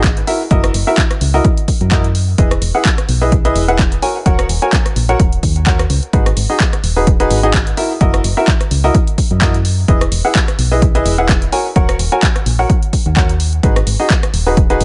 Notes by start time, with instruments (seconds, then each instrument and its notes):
Already playing: fm bass G#1
0.04 kick, clap, closed hi-hat
0.17 closed hi-hat
0.27 upright piano E4 F#4 A#4 E5, open hi-hat
0.51 fm bass F#1, upright piano E4 F#4 A#4 D#5, kick, closed hi-hat
0.64 cross-stick, closed hi-hat
0.74 fm bass F#1, open hi-hat
0.87 upright piano E4 F#4 A#4 E5
0.98 kick, clap, closed hi-hat
1.11 cross-stick, closed hi-hat
1.21 fm bass C#2, open hi-hat
1.34 upright piano E4 F#4 A#4 D#5
1.45 kick, closed hi-hat
1.57 closed hi-hat
1.68 kick, open hi-hat
1.81 fm bass F#2, closed hi-hat
1.91 upright piano E4 F#4 A#4 D#5, kick, clap, closed hi-hat
2.04 closed hi-hat
2.15 open hi-hat
2.38 fm bass E1, upright piano E4 G#4 B4 D#5, kick, closed hi-hat
2.51 cross-stick, closed hi-hat
2.62 fm bass E1, open hi-hat
2.75 upright piano E4 G#4 B4 F#5
2.85 kick, clap, closed hi-hat
2.98 cross-stick, closed hi-hat
3.09 fm bass B1, open hi-hat
3.21 upright piano E4 G#4 B4 D#5
3.32 kick, closed hi-hat
3.45 upright piano E4 G#4 B4 D#5, closed hi-hat
3.56 fm bass E1, open hi-hat
3.68 upright piano E4 G#4 B4 F#5, closed hi-hat
3.79 kick, clap, closed hi-hat
3.92 closed hi-hat
4.02 upright piano F#4 A#4 C#5 G#5, open hi-hat
4.26 fm bass D#1, upright piano F#4 A#4 C#5 F#5, kick, closed hi-hat
4.39 cross-stick, closed hi-hat
4.49 fm bass D#1, open hi-hat
4.62 upright piano F#4 A#4 C#5 G#5, closed hi-hat
4.73 kick, clap, closed hi-hat
4.86 cross-stick, closed hi-hat
4.96 fm bass A#1, open hi-hat
5.09 upright piano F#4 A#4 C#5 F#5, closed hi-hat
5.20 fm bass D#1, kick, closed hi-hat
5.33 closed hi-hat
5.43 fm bass D#2, kick, open hi-hat
5.56 closed hi-hat
5.66 upright piano F#4 A#4 C#5 F#5, kick, clap, closed hi-hat
5.79 cross-stick, closed hi-hat
5.90 fm bass C#2, open hi-hat
6.03 closed hi-hat
6.13 fm bass G#1, upright piano D#4 F#4 G#4 B4, kick, closed hi-hat
6.26 cross-stick, closed hi-hat
6.37 fm bass G#1, open hi-hat
6.50 upright piano D#4 F#4 G#4 D#5
6.60 kick, clap, closed hi-hat
6.73 cross-stick, closed hi-hat
6.84 fm bass D#1, open hi-hat
6.96 upright piano D#4 F#4 G#4 B4
7.07 kick, closed hi-hat
7.20 upright piano D#4 F#4 G#4 B4, closed hi-hat
7.31 fm bass G#1, open hi-hat
7.43 upright piano D#4 F#4 G#4 D#5, closed hi-hat
7.54 kick, clap, closed hi-hat
7.67 closed hi-hat
7.77 upright piano E4 F#4 A#4 E5, open hi-hat
8.01 fm bass F#1, upright piano E4 F#4 A#4 D#5, kick, closed hi-hat
8.14 cross-stick, closed hi-hat
8.24 fm bass F#1, open hi-hat
8.37 upright piano E4 F#4 A#4 E5
8.48 kick, clap, closed hi-hat
8.61 cross-stick, closed hi-hat
8.71 fm bass C#2, open hi-hat
8.84 upright piano E4 F#4 A#4 D#5
8.95 kick, closed hi-hat
9.07 closed hi-hat
9.18 kick, open hi-hat
9.31 fm bass F#2, closed hi-hat
9.41 upright piano E4 F#4 A#4 D#5, kick, clap, closed hi-hat
9.54 closed hi-hat
9.65 open hi-hat
9.88 fm bass E1, upright piano E4 G#4 B4 D#5, kick, closed hi-hat
10.01 cross-stick, closed hi-hat
10.12 fm bass E1, open hi-hat
10.25 upright piano E4 G#4 B4 F#5
10.35 kick, clap, closed hi-hat
10.48 cross-stick, closed hi-hat
10.59 fm bass B1, open hi-hat
10.71 upright piano E4 G#4 B4 D#5
10.82 kick, closed hi-hat
10.95 upright piano E4 G#4 B4 D#5, closed hi-hat
11.06 fm bass E1, open hi-hat
11.18 upright piano E4 G#4 B4 F#5
11.29 kick, clap, closed hi-hat
11.42 closed hi-hat
11.52 upright piano F#4 A#4 C#5 G#5, open hi-hat
11.76 fm bass D#1, upright piano F#4 A#4 C#5 F#5, kick, closed hi-hat
11.89 cross-stick, closed hi-hat
11.99 fm bass D#1, open hi-hat
12.12 upright piano F#4 A#4 C#5 G#5
12.23 kick, clap, closed hi-hat
12.36 cross-stick, closed hi-hat
12.46 fm bass A#1, open hi-hat
12.59 upright piano F#4 A#4 C#5 F#5
12.70 kick, closed hi-hat
12.83 closed hi-hat
12.93 kick, open hi-hat
13.06 fm bass D#2, closed hi-hat
13.16 upright piano F#4 A#4 C#5 F#5, kick, clap, closed hi-hat
13.29 closed hi-hat
13.40 open hi-hat
13.53 closed hi-hat
13.63 fm bass G#1, upright piano D#4 F#4 G#4 B4, kick, closed hi-hat
13.76 cross-stick, closed hi-hat
13.87 fm bass G#1, open hi-hat
14.00 upright piano D#4 F#4 G#4 D#5
14.10 kick, clap, closed hi-hat
14.23 cross-stick, closed hi-hat
14.34 fm bass D#1, open hi-hat
14.46 upright piano D#4 F#4 G#4 B4
14.57 kick, closed hi-hat
14.70 upright piano D#4 F#4 G#4 B4, closed hi-hat
14.81 fm bass G#1, open hi-hat